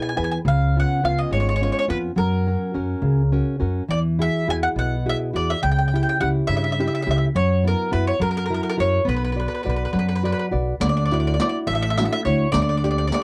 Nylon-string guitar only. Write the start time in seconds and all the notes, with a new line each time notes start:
Already playing: B2 E4 G#4 B4
0.16 E4 G#4 B4
0.45 C#3
0.76 B3 C#4 F4
1.04 B3 C#4 F4
1.31 G#3
1.61 B3 C#4 F4
1.88 B3 C#4 F4
2.16 F#3
2.47 C#4 F#4 A#4
2.74 C#4 F#4 A#4
3.02 C#3
3.32 C#4 F#4 A#4
3.60 C#4 F#4 A#4
3.88 E3
4.19 E4 F#4 G#4
4.48 E4 F#4 G#4
4.76 B2
5.06 E4 F#4 G#4
5.33 E4 F#4 G#4
5.62 C#3
5.93 C#4 E4 G4
6.20 C#4 E4 G4
6.49 C#3
6.79 C#4 E4 G4
7.06 C#4 E4 G4
7.35 F#3
7.64 B3 E4 F#4
7.91 B3 E4 F#4
8.20 F#3
8.50 E4 F#4 A#4
8.77 E4 F#4 A#4
9.05 B3
9.36 F#4 B4 D5
9.65 F#4 B4 D5
9.93 F#3
10.23 F#4 B4 D5
10.51 F#4 B4 D5
10.80 D3
11.11 D4 E4 F#4
11.39 D4 E4 F#4
11.67 A3
11.98 D4 E4 F#4
12.25 D4 E4 F#4
12.52 D3
12.84 A#3 D4 G4
13.11 A#3 D4 G4